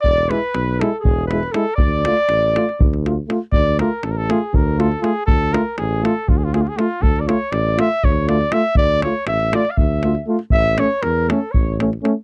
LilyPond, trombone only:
\new Staff \with { instrumentName = "Trombone" } { \time 7/8 \tempo 4 = 120 r8 e'8 r8 e'8 r8 e'8 e'8 | r8 f'8 r8 f'8 r8 f'8 f'8 | r8 f'8 r8 f'8 r8 f'8 f'8 | r8 f'8 r8 f'8 r8 f'8 f'8 |
r8 f'8 r8 f'8 r8 f'8 f'8 | r8 f'8 r8 f'8 r8 f'8 f'8 | r8 cis'8 r8 cis'8 r8 cis'8 cis'8 | }